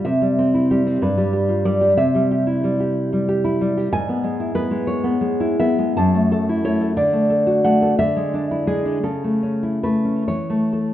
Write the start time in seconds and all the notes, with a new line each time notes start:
0.05 C3 E5
0.22 G3
0.39 C4
0.54 E4
0.71 G3 G4
0.86 C4
1.02 G2 B4
1.17 G3
1.33 G4
1.49 F4
1.65 G3 D5
1.81 G4
1.97 C3 E5
2.15 G3
2.31 G4
2.47 E4
2.64 G3
2.80 G4
3.13 G3
3.29 G4
3.44 E4
3.61 G3
3.77 G4
3.92 G#2 G#5
4.09 B3
4.24 G#3
4.40 E4
4.55 B3 B4
4.71 G#3
4.87 C#5
5.04 B3
5.21 G#3
5.40 E4
5.60 B3 E5
5.79 G#3
5.97 F#2 A5
6.15 A3
6.32 A4
6.49 E4
6.64 A3 C#5
6.81 A4
6.97 D3 D5
7.13 A3
7.30 A4
7.47 F#4
7.64 A3 F#5
7.82 A4
7.99 D3 E5
8.17 G#3
8.34 D4
8.51 E4
8.67 G#3 G#4
8.85 D4
9.03 C#3 A4
9.24 A3
9.43 C#4
9.63 E4
9.83 A3 B4
10.05 C#4
10.28 E3 C#5
10.50 A3
10.73 A4